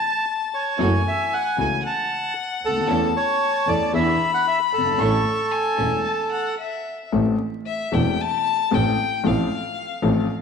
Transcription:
Already playing: A5
0.54 C#5
0.78 F#1 F#2 E3 F#3 A3 C#4 E4 F#4 A4 G#5
1.08 E5
1.34 F#5
1.57 C#2 C#3 E3 A3 C#4 E4 F#4 A4 G#5
1.83 F#5 A5
2.61 D2 A4
2.68 C#2
2.74 D2
2.81 D#2
2.87 E2 E3 A3 C#4 E4 A4 A5
3.17 C#5
3.66 E2 E3 A3 C#4 E4 A4 D5
3.92 E2 E3 B3 D4 E4 G#4 E5 B5
4.34 F#5
4.48 E5
4.72 G1 A4
4.78 F#1
4.84 G1
4.91 G#1
4.98 A1 A2 E3 A3 C#4 E4 A4 C#6
5.51 G#5
5.77 E1 E2 E3 A3 C#4 E4 A4
6.03 A5
6.32 F#5
6.59 E5
7.12 A1 A2 E3 A3 C4 A4
7.66 E5
7.92 E1 E2 E3 A3 C4 A4 G5
8.21 A5
8.71 A1 A2 E3 A3 C4 A4 G5
9.24 A1 A2 F3 A3 C4 A4 F5
10.02 A1 A2 F3 A3 C4 A4

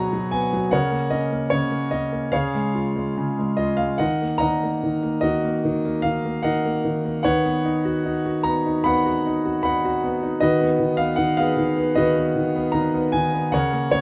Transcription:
Already playing: B2 F#3 B3 F#4 G#4 C#5 D#5 F#5 A#5
0.13 F#3
0.31 B3 G#5
0.53 F#3
0.71 C#3 A#4 C#5 F#5
0.91 A#3
1.10 C#4 D#5
1.32 A#3
1.50 C#3 C#5
1.71 A#3
1.91 C#4 D#5
2.12 A#3
2.32 C#3 G#4 C#5 F5
2.54 G#3
2.75 F4
2.96 G#3
3.17 C#3
3.39 G#3
3.57 F4 D#5
3.77 G#3 F5
3.98 D#3 A#4 D#5 F#5
4.22 A#3
4.38 D#5 F#5 A#5
4.42 D#3
4.63 A#3
4.83 D#3
5.03 A#3
5.21 D#3 F#4 A#4 D#5
5.44 A#3
5.65 D#3
5.85 A#3
6.02 D#3 F5
6.25 A#3
6.43 D#3 A#4 D#5 F#5
6.66 A#3
6.85 D#3
7.05 A#3
7.23 D#3 B4 C#5 F#5
7.45 B3
7.65 D#4
7.85 F#4
8.05 D#4
8.26 F#4
8.43 B3 A#5
8.66 D#4
8.84 B3 F#5 B5
9.06 F#4
9.26 D#4
9.45 F#4
9.63 D#4 F#5 B5
9.85 F#4
10.03 B3
10.23 D#4
10.40 D#3 F#4 B4 D#5
10.61 B3
10.80 D#3
10.97 B3 F5
11.16 D#3 F#5
11.37 B3 G#4 B4 F5
11.57 D#3
11.77 B3
11.95 D#3 F#4 B4 D#5
12.16 B3
12.36 D#3
12.55 B3
12.72 D#3 A#5
12.94 B3
13.12 D#3 G#5
13.33 B3
13.52 C#3 A#4 C#5 F#5
13.72 A#3
13.91 C#3 C#5

